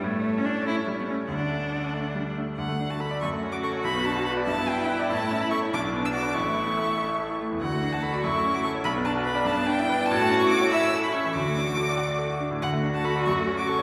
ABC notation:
X:1
M:6/8
L:1/16
Q:3/8=96
K:D
V:1 name="Violin"
c12 | f8- f2 z2 | f3 a b2 c'3 d' c'2 | b2 a2 b2 a2 g4 |
a3 b c'2 d'3 e' d'2 | c'8- c'2 z2 | f3 a b2 c'3 d' c'2 | b2 a2 b2 a2 g4 |
a3 c' d'2 e'3 b c'2 | d'8- d'2 z2 | f3 a b2 c'3 d' c'2 |]
V:2 name="Cello"
A,3 C D2 E3 B, C2 | D8- D2 z2 | z6 F6- | F6 E6- |
E6 D6 | E8- E z3 | F6 E6 | D12 |
F6 E6 | F8- F z3 | F12 |]
V:3 name="Grand piano"
A,,2 A,2 C2 A,2 G,2 A,2 | D,,2 A,2 D2 A,2 G,2 A,2 | D,, A, D F A d F,, A, C F A c | B,,, B, D F B d G,, B, D E B d |
A,, A, C E A c B,,, F, B, D F B | A,,, A, E A, A e A e A E A, E,, | D,, A, D F A d F,, A, C F A c | B,,, B, D F B d G,, B, D E B d |
A,, A, C E A c e c A E C E, | D,, A, D F A d f d A F D A,, | D,, A, D F A d F,, A, C F A c |]